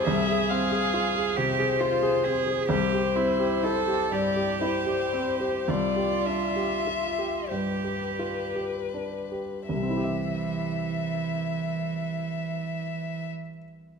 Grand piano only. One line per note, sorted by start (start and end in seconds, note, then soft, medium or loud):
0.07 2.66 C2 soft
0.28 0.63 G#4 soft
0.51 0.85 C4 soft
0.72 1.07 G#4 soft
0.94 1.29 F4 soft
1.16 1.50 G#4 soft
1.38 1.72 C3 soft
1.59 1.94 G#4 soft
1.80 2.16 F4 soft
2.03 2.38 G#4 soft
2.24 2.61 C4 soft
2.47 2.70 G#4 soft
2.69 5.63 C2 soft
2.93 3.30 G4 soft
3.15 3.53 C4 soft
3.39 3.77 G4 soft
3.63 4.02 E4 soft
3.87 4.26 G4 soft
4.12 4.51 G2 soft
4.36 4.76 G4 soft
4.61 5.02 E4 soft
4.86 5.29 G4 soft
5.13 5.57 C4 soft
5.40 5.68 G4 soft
5.68 9.65 C2 soft
5.96 6.44 G4 soft
6.26 6.74 D4 soft
6.56 7.06 G4 soft
6.87 7.38 F4 soft
7.19 7.71 G4 soft
7.51 8.06 G2 soft
7.84 8.41 G4 soft
8.19 8.78 F4 soft
8.55 9.17 G4 soft
8.94 9.55 D4 soft
9.32 9.69 G4 soft
9.69 13.29 C2 soft
9.76 13.36 C3 soft
9.83 13.42 C4 soft
9.90 13.49 E4 soft
9.97 13.56 G4 soft
10.04 13.63 E5 soft